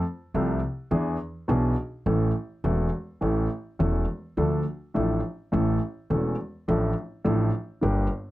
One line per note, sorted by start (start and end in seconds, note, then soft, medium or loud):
0.34 0.59 C2 medium
0.34 0.59 C3 medium
0.34 0.58 F3 medium
0.34 0.59 A3 medium
0.34 0.59 C4 medium
0.34 0.59 A4 medium
0.91 1.16 E2 medium
0.91 1.16 E3 medium
0.91 1.16 B3 medium
0.91 1.16 D4 medium
0.91 1.16 G#4 medium
1.48 1.73 B1 medium
1.48 1.73 B2 medium
1.48 1.73 E3 medium
1.48 1.73 B3 medium
1.48 1.73 D4 medium
1.48 1.73 G#4 medium
2.06 2.30 A1 medium
2.06 2.30 A2 medium
2.06 2.30 E3 medium
2.06 2.30 A3 medium
2.06 2.31 C#4 medium
2.06 2.31 A4 medium
2.64 2.88 E1 medium
2.64 2.88 E2 medium
2.64 2.88 E3 medium
2.64 2.88 A3 medium
2.64 2.88 C#4 soft
2.64 2.88 A4 medium
3.21 3.46 A1 medium
3.21 3.46 A2 medium
3.21 3.46 E3 medium
3.21 3.46 A3 soft
3.21 3.46 C#4 soft
3.21 3.46 A4 medium
3.79 4.04 E1 medium
3.79 4.04 E2 medium
3.79 4.04 E3 medium
3.79 4.04 A3 medium
3.79 4.04 C#4 medium
3.79 4.04 A4 medium
4.37 4.62 D2 medium
4.37 4.62 D3 medium
4.37 4.62 F3 medium
4.37 4.62 A3 medium
4.37 4.62 D4 medium
4.37 4.62 A4 medium
4.94 5.19 A1 medium
4.94 5.20 A1 medium
4.94 5.19 A2 medium
4.94 5.20 F3 medium
4.94 5.19 A3 medium
4.94 5.19 D4 medium
4.94 5.19 A4 medium
5.52 5.77 A1 medium
5.52 5.77 A2 medium
5.52 5.77 E3 medium
5.52 5.77 A3 medium
5.52 5.77 C#4 medium
5.52 5.77 A4 medium
6.10 6.35 E1 medium
6.10 6.35 E2 medium
6.10 6.34 E3 medium
6.10 6.35 A3 medium
6.10 6.35 C#4 medium
6.10 6.35 A4 medium
6.68 6.92 A1 medium
6.68 6.92 A2 medium
6.68 6.92 F3 medium
6.68 6.92 A3 medium
6.68 6.92 D4 medium
6.68 6.92 A4 medium
7.24 7.49 A1 medium
7.24 7.49 A2 medium
7.24 7.49 F3 medium
7.24 7.49 A3 medium
7.24 7.49 D4 medium
7.24 7.49 A4 medium
7.81 8.06 G1 medium
7.81 8.07 G1 medium
7.81 8.06 G2 medium
7.81 8.06 D3 medium
7.81 8.06 G3 medium
7.81 8.06 A#3 medium
7.81 8.06 G4 medium